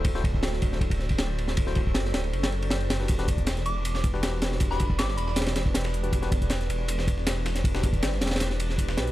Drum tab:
RD |x---x---x---x---x-x---x-x---x---|x---x---x---x-x-x-x-x-x-x-x-x---|x---x---x---x---x---x---x---x---|x---x---x---x---xxx-x---x-x-----|
HH |--------------------------------|--------------------------------|x-x-x-x-x-x-x---x---x---x---x---|x---x---x---x---x---x---x---x-x-|
SD |--o-----o-o---o-----o---o-----o-|--o-----o-o-o-----o-----o---o-o-|--o-----o-o-------o---o-o---o-o-|--o-----o-o---o-ooo-o---o-o-----|
BD |o---o-o-----o---o-o---o---------|o---o-o-------------------------|o---o-o-------------o-----------|o---o-o---------------o---------|

RD |x---x---x---x---x---x---x---x---|x---x---x---xxxxx---x---x---x---|
HH |x-x-x-x-x-x-x---x---x---x-----x-|x---x-x-x---x---x---x---x---x-x-|
SD |--o-----o-o-------o---o-o---o-o-|--o-----o-o-ooooo-o---o---o-o---|
BD |o---o-o-------------o-----------|o---o-o-----------------o-------|